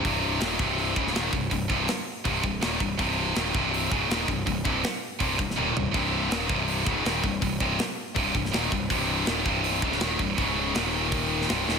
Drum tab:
HH |o---o---o---o---|o---o---o---o---|o---o---o---o---|o---o---o-------|
SD |----o------oo---|----o-------o---|----o-------o---|----o------o----|
T1 |----------------|----------------|----------------|------------o---|
FT |----------------|----------------|----------------|--------------o-|
BD |o-----o---o---o-|o-o-----o-o---o-|o-----o---o---o-|o-o-----o-o-----|

HH |o---o---o---o---|o---o---o---o---|o---o---o---o---|o---o---o---o---|
SD |----o-------o---|----o------oo---|----o------oo---|----o------oo-o-|
T1 |----------------|----------------|----------------|----------------|
FT |----------------|----------------|----------------|----------------|
BD |o-----o---o---o-|o-o-----o-o---o-|o-----o---o---o-|o-------o-------|